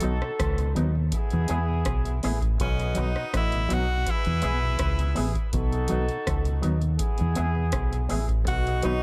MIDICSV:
0, 0, Header, 1, 9, 480
1, 0, Start_track
1, 0, Key_signature, 4, "major"
1, 0, Tempo, 733496
1, 1701, Time_signature, 4, 2, 24, 8
1, 5909, End_track
2, 0, Start_track
2, 0, Title_t, "Horn section"
2, 0, Program_c, 0, 61
2, 0, Note_on_c, 0, 63, 75
2, 0, Note_on_c, 0, 66, 75
2, 0, Note_on_c, 0, 69, 88
2, 483, Note_off_c, 0, 69, 0
2, 484, Note_off_c, 0, 63, 0
2, 484, Note_off_c, 0, 66, 0
2, 737, Note_on_c, 0, 59, 77
2, 737, Note_on_c, 0, 64, 83
2, 737, Note_on_c, 0, 68, 90
2, 1444, Note_off_c, 0, 64, 0
2, 1444, Note_off_c, 0, 68, 0
2, 1445, Note_off_c, 0, 59, 0
2, 1700, Note_on_c, 0, 66, 86
2, 1700, Note_on_c, 0, 71, 82
2, 1700, Note_on_c, 0, 75, 83
2, 2406, Note_off_c, 0, 66, 0
2, 2406, Note_off_c, 0, 71, 0
2, 2406, Note_off_c, 0, 75, 0
2, 2661, Note_on_c, 0, 71, 90
2, 2662, Note_on_c, 0, 68, 82
2, 2663, Note_on_c, 0, 64, 83
2, 3367, Note_off_c, 0, 71, 0
2, 3368, Note_off_c, 0, 64, 0
2, 3368, Note_off_c, 0, 68, 0
2, 3622, Note_on_c, 0, 63, 83
2, 3622, Note_on_c, 0, 69, 85
2, 3625, Note_on_c, 0, 66, 81
2, 4327, Note_off_c, 0, 63, 0
2, 4327, Note_off_c, 0, 69, 0
2, 4329, Note_off_c, 0, 66, 0
2, 4569, Note_on_c, 0, 68, 89
2, 4570, Note_on_c, 0, 64, 79
2, 4571, Note_on_c, 0, 59, 81
2, 5281, Note_off_c, 0, 68, 0
2, 5282, Note_off_c, 0, 59, 0
2, 5282, Note_off_c, 0, 64, 0
2, 5533, Note_on_c, 0, 66, 86
2, 5536, Note_on_c, 0, 59, 76
2, 5536, Note_on_c, 0, 63, 79
2, 5909, Note_off_c, 0, 59, 0
2, 5909, Note_off_c, 0, 63, 0
2, 5909, Note_off_c, 0, 66, 0
2, 5909, End_track
3, 0, Start_track
3, 0, Title_t, "Upright piano"
3, 0, Program_c, 1, 0
3, 5778, Note_on_c, 1, 59, 96
3, 5781, Note_on_c, 1, 63, 86
3, 5782, Note_on_c, 1, 66, 75
3, 5787, Note_on_c, 1, 71, 97
3, 5909, Note_off_c, 1, 59, 0
3, 5909, Note_off_c, 1, 63, 0
3, 5909, Note_off_c, 1, 66, 0
3, 5909, Note_off_c, 1, 71, 0
3, 5909, End_track
4, 0, Start_track
4, 0, Title_t, "Tenor saxophone"
4, 0, Program_c, 2, 66
4, 1711, Note_on_c, 2, 61, 92
4, 1963, Note_on_c, 2, 63, 95
4, 1973, Note_off_c, 2, 61, 0
4, 2192, Note_off_c, 2, 63, 0
4, 2204, Note_on_c, 2, 64, 101
4, 2445, Note_on_c, 2, 66, 110
4, 2455, Note_off_c, 2, 64, 0
4, 2686, Note_on_c, 2, 64, 94
4, 2695, Note_off_c, 2, 66, 0
4, 3394, Note_off_c, 2, 64, 0
4, 5549, Note_on_c, 2, 66, 110
4, 5769, Note_off_c, 2, 66, 0
4, 5791, Note_on_c, 2, 63, 104
4, 5909, Note_off_c, 2, 63, 0
4, 5909, End_track
5, 0, Start_track
5, 0, Title_t, "Clean electric guitar"
5, 0, Program_c, 3, 27
5, 10, Note_on_c, 3, 54, 83
5, 17, Note_on_c, 3, 59, 93
5, 26, Note_on_c, 3, 63, 98
5, 109, Note_off_c, 3, 54, 0
5, 113, Note_off_c, 3, 59, 0
5, 117, Note_off_c, 3, 63, 0
5, 492, Note_on_c, 3, 54, 87
5, 500, Note_on_c, 3, 59, 90
5, 503, Note_on_c, 3, 63, 94
5, 590, Note_off_c, 3, 54, 0
5, 594, Note_off_c, 3, 59, 0
5, 596, Note_off_c, 3, 63, 0
5, 976, Note_on_c, 3, 59, 82
5, 984, Note_on_c, 3, 64, 90
5, 985, Note_on_c, 3, 68, 99
5, 1073, Note_off_c, 3, 59, 0
5, 1076, Note_off_c, 3, 64, 0
5, 1077, Note_off_c, 3, 68, 0
5, 1462, Note_on_c, 3, 59, 80
5, 1465, Note_on_c, 3, 64, 87
5, 1470, Note_on_c, 3, 68, 100
5, 1555, Note_off_c, 3, 59, 0
5, 1557, Note_off_c, 3, 64, 0
5, 1559, Note_off_c, 3, 68, 0
5, 1929, Note_on_c, 3, 54, 85
5, 1938, Note_on_c, 3, 59, 72
5, 1945, Note_on_c, 3, 63, 96
5, 2029, Note_off_c, 3, 54, 0
5, 2033, Note_off_c, 3, 59, 0
5, 2037, Note_off_c, 3, 63, 0
5, 2413, Note_on_c, 3, 54, 88
5, 2419, Note_on_c, 3, 59, 79
5, 2424, Note_on_c, 3, 63, 101
5, 2511, Note_off_c, 3, 54, 0
5, 2514, Note_off_c, 3, 59, 0
5, 2517, Note_off_c, 3, 63, 0
5, 2893, Note_on_c, 3, 59, 81
5, 2896, Note_on_c, 3, 64, 87
5, 2903, Note_on_c, 3, 68, 98
5, 2991, Note_off_c, 3, 59, 0
5, 2992, Note_off_c, 3, 64, 0
5, 2996, Note_off_c, 3, 68, 0
5, 3372, Note_on_c, 3, 59, 88
5, 3377, Note_on_c, 3, 64, 75
5, 3385, Note_on_c, 3, 68, 92
5, 3470, Note_off_c, 3, 59, 0
5, 3473, Note_off_c, 3, 64, 0
5, 3477, Note_off_c, 3, 68, 0
5, 3854, Note_on_c, 3, 54, 78
5, 3862, Note_on_c, 3, 59, 89
5, 3864, Note_on_c, 3, 63, 80
5, 3952, Note_off_c, 3, 54, 0
5, 3956, Note_off_c, 3, 59, 0
5, 3957, Note_off_c, 3, 63, 0
5, 4329, Note_on_c, 3, 54, 78
5, 4335, Note_on_c, 3, 59, 89
5, 4343, Note_on_c, 3, 63, 87
5, 4430, Note_off_c, 3, 54, 0
5, 4432, Note_off_c, 3, 59, 0
5, 4436, Note_off_c, 3, 63, 0
5, 4817, Note_on_c, 3, 59, 77
5, 4820, Note_on_c, 3, 64, 84
5, 4825, Note_on_c, 3, 68, 87
5, 4913, Note_off_c, 3, 59, 0
5, 4915, Note_off_c, 3, 64, 0
5, 4918, Note_off_c, 3, 68, 0
5, 5293, Note_on_c, 3, 59, 75
5, 5299, Note_on_c, 3, 64, 88
5, 5308, Note_on_c, 3, 68, 92
5, 5392, Note_off_c, 3, 59, 0
5, 5395, Note_off_c, 3, 64, 0
5, 5399, Note_off_c, 3, 68, 0
5, 5778, Note_on_c, 3, 54, 80
5, 5783, Note_on_c, 3, 59, 82
5, 5788, Note_on_c, 3, 63, 85
5, 5874, Note_off_c, 3, 54, 0
5, 5877, Note_off_c, 3, 59, 0
5, 5879, Note_off_c, 3, 63, 0
5, 5909, End_track
6, 0, Start_track
6, 0, Title_t, "Tonewheel organ"
6, 0, Program_c, 4, 16
6, 13, Note_on_c, 4, 54, 67
6, 16, Note_on_c, 4, 51, 63
6, 18, Note_on_c, 4, 59, 84
6, 78, Note_off_c, 4, 54, 0
6, 79, Note_off_c, 4, 51, 0
6, 80, Note_off_c, 4, 59, 0
6, 144, Note_on_c, 4, 47, 55
6, 201, Note_off_c, 4, 47, 0
6, 388, Note_on_c, 4, 47, 62
6, 443, Note_off_c, 4, 47, 0
6, 496, Note_on_c, 4, 51, 68
6, 496, Note_on_c, 4, 54, 63
6, 497, Note_on_c, 4, 59, 76
6, 559, Note_off_c, 4, 51, 0
6, 559, Note_off_c, 4, 54, 0
6, 560, Note_off_c, 4, 59, 0
6, 624, Note_on_c, 4, 47, 60
6, 681, Note_off_c, 4, 47, 0
6, 864, Note_on_c, 4, 47, 55
6, 866, Note_on_c, 4, 40, 55
6, 921, Note_off_c, 4, 47, 0
6, 922, Note_off_c, 4, 40, 0
6, 973, Note_on_c, 4, 52, 68
6, 974, Note_on_c, 4, 56, 64
6, 978, Note_on_c, 4, 59, 79
6, 1038, Note_off_c, 4, 52, 0
6, 1038, Note_off_c, 4, 56, 0
6, 1040, Note_off_c, 4, 59, 0
6, 1105, Note_on_c, 4, 40, 58
6, 1107, Note_on_c, 4, 47, 56
6, 1161, Note_off_c, 4, 40, 0
6, 1162, Note_off_c, 4, 47, 0
6, 1350, Note_on_c, 4, 40, 48
6, 1350, Note_on_c, 4, 47, 52
6, 1404, Note_off_c, 4, 40, 0
6, 1404, Note_off_c, 4, 47, 0
6, 1462, Note_on_c, 4, 52, 77
6, 1465, Note_on_c, 4, 56, 60
6, 1465, Note_on_c, 4, 59, 78
6, 1522, Note_off_c, 4, 52, 0
6, 1524, Note_off_c, 4, 56, 0
6, 1524, Note_off_c, 4, 59, 0
6, 1826, Note_on_c, 4, 47, 55
6, 1882, Note_off_c, 4, 47, 0
6, 1932, Note_on_c, 4, 51, 73
6, 1939, Note_on_c, 4, 54, 70
6, 1940, Note_on_c, 4, 59, 83
6, 1998, Note_off_c, 4, 51, 0
6, 2001, Note_off_c, 4, 54, 0
6, 2001, Note_off_c, 4, 59, 0
6, 2075, Note_on_c, 4, 47, 62
6, 2126, Note_off_c, 4, 47, 0
6, 2316, Note_on_c, 4, 47, 58
6, 2367, Note_off_c, 4, 47, 0
6, 2425, Note_on_c, 4, 51, 65
6, 2425, Note_on_c, 4, 54, 65
6, 2426, Note_on_c, 4, 59, 77
6, 2484, Note_off_c, 4, 51, 0
6, 2484, Note_off_c, 4, 54, 0
6, 2484, Note_off_c, 4, 59, 0
6, 2546, Note_on_c, 4, 47, 55
6, 2602, Note_off_c, 4, 47, 0
6, 2788, Note_on_c, 4, 47, 60
6, 2790, Note_on_c, 4, 40, 59
6, 2843, Note_off_c, 4, 47, 0
6, 2844, Note_off_c, 4, 40, 0
6, 2904, Note_on_c, 4, 52, 71
6, 2907, Note_on_c, 4, 56, 55
6, 2908, Note_on_c, 4, 59, 71
6, 2963, Note_off_c, 4, 52, 0
6, 2965, Note_off_c, 4, 56, 0
6, 2965, Note_off_c, 4, 59, 0
6, 3028, Note_on_c, 4, 47, 60
6, 3029, Note_on_c, 4, 40, 56
6, 3083, Note_off_c, 4, 47, 0
6, 3084, Note_off_c, 4, 40, 0
6, 3262, Note_on_c, 4, 40, 58
6, 3262, Note_on_c, 4, 47, 49
6, 3320, Note_off_c, 4, 40, 0
6, 3320, Note_off_c, 4, 47, 0
6, 3374, Note_on_c, 4, 52, 74
6, 3377, Note_on_c, 4, 56, 65
6, 3380, Note_on_c, 4, 59, 80
6, 3439, Note_off_c, 4, 52, 0
6, 3440, Note_off_c, 4, 56, 0
6, 3442, Note_off_c, 4, 59, 0
6, 3742, Note_on_c, 4, 47, 60
6, 3800, Note_off_c, 4, 47, 0
6, 3854, Note_on_c, 4, 51, 71
6, 3857, Note_on_c, 4, 54, 66
6, 3859, Note_on_c, 4, 59, 75
6, 3919, Note_off_c, 4, 51, 0
6, 3920, Note_off_c, 4, 54, 0
6, 3921, Note_off_c, 4, 59, 0
6, 3981, Note_on_c, 4, 47, 55
6, 4040, Note_off_c, 4, 47, 0
6, 4218, Note_on_c, 4, 47, 62
6, 4278, Note_off_c, 4, 47, 0
6, 4334, Note_on_c, 4, 51, 69
6, 4335, Note_on_c, 4, 54, 68
6, 4338, Note_on_c, 4, 59, 80
6, 4399, Note_off_c, 4, 51, 0
6, 4399, Note_off_c, 4, 54, 0
6, 4401, Note_off_c, 4, 59, 0
6, 4457, Note_on_c, 4, 47, 53
6, 4518, Note_off_c, 4, 47, 0
6, 4700, Note_on_c, 4, 47, 60
6, 4704, Note_on_c, 4, 40, 57
6, 4759, Note_off_c, 4, 47, 0
6, 4761, Note_off_c, 4, 40, 0
6, 4812, Note_on_c, 4, 52, 63
6, 4814, Note_on_c, 4, 56, 63
6, 4817, Note_on_c, 4, 59, 71
6, 4878, Note_off_c, 4, 52, 0
6, 4879, Note_off_c, 4, 56, 0
6, 4880, Note_off_c, 4, 59, 0
6, 4941, Note_on_c, 4, 40, 58
6, 4943, Note_on_c, 4, 47, 55
6, 5000, Note_off_c, 4, 40, 0
6, 5001, Note_off_c, 4, 47, 0
6, 5187, Note_on_c, 4, 40, 47
6, 5191, Note_on_c, 4, 47, 55
6, 5243, Note_off_c, 4, 40, 0
6, 5245, Note_off_c, 4, 47, 0
6, 5298, Note_on_c, 4, 59, 76
6, 5299, Note_on_c, 4, 52, 74
6, 5301, Note_on_c, 4, 56, 69
6, 5361, Note_off_c, 4, 59, 0
6, 5362, Note_off_c, 4, 52, 0
6, 5362, Note_off_c, 4, 56, 0
6, 5672, Note_on_c, 4, 47, 56
6, 5725, Note_off_c, 4, 47, 0
6, 5794, Note_on_c, 4, 51, 71
6, 5796, Note_on_c, 4, 59, 73
6, 5797, Note_on_c, 4, 54, 65
6, 5849, Note_off_c, 4, 51, 0
6, 5850, Note_off_c, 4, 59, 0
6, 5851, Note_off_c, 4, 54, 0
6, 5909, End_track
7, 0, Start_track
7, 0, Title_t, "Fingered electric bass"
7, 0, Program_c, 5, 33
7, 26, Note_on_c, 5, 35, 85
7, 137, Note_off_c, 5, 35, 0
7, 266, Note_on_c, 5, 37, 93
7, 480, Note_off_c, 5, 37, 0
7, 505, Note_on_c, 5, 39, 86
7, 720, Note_off_c, 5, 39, 0
7, 872, Note_on_c, 5, 40, 94
7, 973, Note_off_c, 5, 40, 0
7, 982, Note_on_c, 5, 40, 82
7, 1198, Note_off_c, 5, 40, 0
7, 1222, Note_on_c, 5, 35, 67
7, 1438, Note_off_c, 5, 35, 0
7, 1472, Note_on_c, 5, 33, 82
7, 1684, Note_off_c, 5, 33, 0
7, 1706, Note_on_c, 5, 35, 116
7, 1921, Note_off_c, 5, 35, 0
7, 1948, Note_on_c, 5, 35, 94
7, 2058, Note_off_c, 5, 35, 0
7, 2189, Note_on_c, 5, 33, 97
7, 2402, Note_off_c, 5, 33, 0
7, 2430, Note_on_c, 5, 35, 81
7, 2643, Note_off_c, 5, 35, 0
7, 2793, Note_on_c, 5, 40, 81
7, 2894, Note_off_c, 5, 40, 0
7, 2908, Note_on_c, 5, 35, 90
7, 3122, Note_off_c, 5, 35, 0
7, 3143, Note_on_c, 5, 37, 85
7, 3359, Note_off_c, 5, 37, 0
7, 3391, Note_on_c, 5, 33, 81
7, 3500, Note_off_c, 5, 33, 0
7, 3626, Note_on_c, 5, 35, 113
7, 3841, Note_off_c, 5, 35, 0
7, 3874, Note_on_c, 5, 35, 83
7, 3982, Note_off_c, 5, 35, 0
7, 4107, Note_on_c, 5, 37, 96
7, 4322, Note_off_c, 5, 37, 0
7, 4348, Note_on_c, 5, 39, 89
7, 4562, Note_off_c, 5, 39, 0
7, 4718, Note_on_c, 5, 40, 88
7, 4817, Note_off_c, 5, 40, 0
7, 4833, Note_on_c, 5, 40, 75
7, 5045, Note_off_c, 5, 40, 0
7, 5063, Note_on_c, 5, 35, 68
7, 5280, Note_off_c, 5, 35, 0
7, 5312, Note_on_c, 5, 33, 81
7, 5524, Note_off_c, 5, 33, 0
7, 5548, Note_on_c, 5, 35, 100
7, 5763, Note_off_c, 5, 35, 0
7, 5792, Note_on_c, 5, 35, 95
7, 5901, Note_off_c, 5, 35, 0
7, 5909, End_track
8, 0, Start_track
8, 0, Title_t, "Muted clean electric guitar strokes"
8, 622, Note_on_c, 9, 29, 46
8, 687, Note_off_c, 9, 29, 0
8, 2537, Note_on_c, 9, 29, 49
8, 2603, Note_off_c, 9, 29, 0
8, 4451, Note_on_c, 9, 29, 45
8, 4517, Note_off_c, 9, 29, 0
8, 5909, End_track
9, 0, Start_track
9, 0, Title_t, "Drums"
9, 3, Note_on_c, 9, 42, 77
9, 69, Note_off_c, 9, 42, 0
9, 143, Note_on_c, 9, 37, 68
9, 208, Note_off_c, 9, 37, 0
9, 259, Note_on_c, 9, 37, 110
9, 260, Note_on_c, 9, 36, 112
9, 261, Note_on_c, 9, 42, 90
9, 324, Note_off_c, 9, 37, 0
9, 325, Note_off_c, 9, 36, 0
9, 326, Note_off_c, 9, 42, 0
9, 380, Note_on_c, 9, 42, 48
9, 445, Note_off_c, 9, 42, 0
9, 499, Note_on_c, 9, 42, 59
9, 564, Note_off_c, 9, 42, 0
9, 732, Note_on_c, 9, 42, 89
9, 736, Note_on_c, 9, 36, 106
9, 798, Note_off_c, 9, 42, 0
9, 802, Note_off_c, 9, 36, 0
9, 854, Note_on_c, 9, 42, 46
9, 919, Note_off_c, 9, 42, 0
9, 968, Note_on_c, 9, 42, 70
9, 1034, Note_off_c, 9, 42, 0
9, 1212, Note_on_c, 9, 42, 76
9, 1216, Note_on_c, 9, 37, 95
9, 1217, Note_on_c, 9, 36, 113
9, 1277, Note_off_c, 9, 42, 0
9, 1281, Note_off_c, 9, 37, 0
9, 1283, Note_off_c, 9, 36, 0
9, 1344, Note_on_c, 9, 42, 53
9, 1410, Note_off_c, 9, 42, 0
9, 1459, Note_on_c, 9, 46, 69
9, 1524, Note_off_c, 9, 46, 0
9, 1583, Note_on_c, 9, 36, 92
9, 1586, Note_on_c, 9, 42, 37
9, 1649, Note_off_c, 9, 36, 0
9, 1651, Note_off_c, 9, 42, 0
9, 1700, Note_on_c, 9, 42, 96
9, 1701, Note_on_c, 9, 36, 114
9, 1765, Note_off_c, 9, 42, 0
9, 1767, Note_off_c, 9, 36, 0
9, 1829, Note_on_c, 9, 42, 49
9, 1895, Note_off_c, 9, 42, 0
9, 1930, Note_on_c, 9, 42, 68
9, 1995, Note_off_c, 9, 42, 0
9, 2067, Note_on_c, 9, 37, 69
9, 2132, Note_off_c, 9, 37, 0
9, 2184, Note_on_c, 9, 37, 112
9, 2185, Note_on_c, 9, 36, 112
9, 2186, Note_on_c, 9, 42, 90
9, 2249, Note_off_c, 9, 37, 0
9, 2250, Note_off_c, 9, 36, 0
9, 2251, Note_off_c, 9, 42, 0
9, 2304, Note_on_c, 9, 42, 51
9, 2370, Note_off_c, 9, 42, 0
9, 2423, Note_on_c, 9, 42, 67
9, 2489, Note_off_c, 9, 42, 0
9, 2661, Note_on_c, 9, 36, 110
9, 2661, Note_on_c, 9, 42, 95
9, 2726, Note_off_c, 9, 42, 0
9, 2727, Note_off_c, 9, 36, 0
9, 2779, Note_on_c, 9, 42, 42
9, 2844, Note_off_c, 9, 42, 0
9, 2891, Note_on_c, 9, 42, 68
9, 2956, Note_off_c, 9, 42, 0
9, 3133, Note_on_c, 9, 42, 80
9, 3137, Note_on_c, 9, 37, 99
9, 3138, Note_on_c, 9, 36, 105
9, 3198, Note_off_c, 9, 42, 0
9, 3202, Note_off_c, 9, 37, 0
9, 3203, Note_off_c, 9, 36, 0
9, 3264, Note_on_c, 9, 42, 57
9, 3330, Note_off_c, 9, 42, 0
9, 3376, Note_on_c, 9, 46, 65
9, 3441, Note_off_c, 9, 46, 0
9, 3503, Note_on_c, 9, 36, 84
9, 3504, Note_on_c, 9, 42, 34
9, 3568, Note_off_c, 9, 36, 0
9, 3569, Note_off_c, 9, 42, 0
9, 3618, Note_on_c, 9, 42, 93
9, 3620, Note_on_c, 9, 36, 120
9, 3684, Note_off_c, 9, 42, 0
9, 3686, Note_off_c, 9, 36, 0
9, 3747, Note_on_c, 9, 42, 46
9, 3812, Note_off_c, 9, 42, 0
9, 3847, Note_on_c, 9, 42, 72
9, 3912, Note_off_c, 9, 42, 0
9, 3982, Note_on_c, 9, 42, 36
9, 4048, Note_off_c, 9, 42, 0
9, 4103, Note_on_c, 9, 37, 122
9, 4104, Note_on_c, 9, 36, 117
9, 4105, Note_on_c, 9, 42, 91
9, 4168, Note_off_c, 9, 37, 0
9, 4169, Note_off_c, 9, 36, 0
9, 4171, Note_off_c, 9, 42, 0
9, 4223, Note_on_c, 9, 42, 47
9, 4288, Note_off_c, 9, 42, 0
9, 4339, Note_on_c, 9, 42, 58
9, 4404, Note_off_c, 9, 42, 0
9, 4460, Note_on_c, 9, 42, 32
9, 4525, Note_off_c, 9, 42, 0
9, 4575, Note_on_c, 9, 42, 106
9, 4579, Note_on_c, 9, 36, 111
9, 4640, Note_off_c, 9, 42, 0
9, 4644, Note_off_c, 9, 36, 0
9, 4697, Note_on_c, 9, 42, 49
9, 4762, Note_off_c, 9, 42, 0
9, 4813, Note_on_c, 9, 42, 73
9, 4878, Note_off_c, 9, 42, 0
9, 5053, Note_on_c, 9, 42, 84
9, 5057, Note_on_c, 9, 37, 102
9, 5058, Note_on_c, 9, 36, 105
9, 5118, Note_off_c, 9, 42, 0
9, 5122, Note_off_c, 9, 37, 0
9, 5124, Note_off_c, 9, 36, 0
9, 5187, Note_on_c, 9, 42, 52
9, 5253, Note_off_c, 9, 42, 0
9, 5298, Note_on_c, 9, 46, 67
9, 5363, Note_off_c, 9, 46, 0
9, 5424, Note_on_c, 9, 36, 88
9, 5426, Note_on_c, 9, 42, 34
9, 5490, Note_off_c, 9, 36, 0
9, 5491, Note_off_c, 9, 42, 0
9, 5542, Note_on_c, 9, 42, 97
9, 5543, Note_on_c, 9, 36, 110
9, 5608, Note_off_c, 9, 36, 0
9, 5608, Note_off_c, 9, 42, 0
9, 5672, Note_on_c, 9, 42, 46
9, 5738, Note_off_c, 9, 42, 0
9, 5775, Note_on_c, 9, 42, 67
9, 5841, Note_off_c, 9, 42, 0
9, 5909, End_track
0, 0, End_of_file